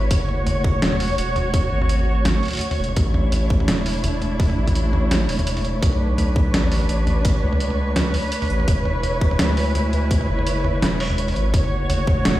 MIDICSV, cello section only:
0, 0, Header, 1, 2, 480
1, 0, Start_track
1, 0, Tempo, 357143
1, 149, Time_signature, 4, 2, 24, 8
1, 16664, End_track
2, 0, Start_track
2, 0, Title_t, "Cello section"
2, 0, Program_c, 0, 48
2, 136, Note_on_c, 0, 57, 79
2, 139, Note_on_c, 0, 66, 73
2, 139, Note_on_c, 0, 73, 87
2, 3945, Note_off_c, 0, 66, 0
2, 3945, Note_off_c, 0, 73, 0
2, 3993, Note_on_c, 0, 64, 76
2, 3995, Note_on_c, 0, 62, 89
2, 7793, Note_off_c, 0, 62, 0
2, 7793, Note_off_c, 0, 64, 0
2, 7827, Note_on_c, 0, 62, 74
2, 7832, Note_on_c, 0, 71, 90
2, 11608, Note_off_c, 0, 57, 0
2, 11630, Note_off_c, 0, 62, 0
2, 11658, Note_on_c, 0, 56, 77
2, 11662, Note_on_c, 0, 64, 72
2, 15457, Note_off_c, 0, 71, 0
2, 15465, Note_off_c, 0, 56, 0
2, 15467, Note_off_c, 0, 64, 0
2, 15510, Note_on_c, 0, 73, 90
2, 15511, Note_on_c, 0, 66, 72
2, 15514, Note_on_c, 0, 57, 82
2, 16664, Note_off_c, 0, 57, 0
2, 16664, Note_off_c, 0, 66, 0
2, 16664, Note_off_c, 0, 73, 0
2, 16664, End_track
0, 0, End_of_file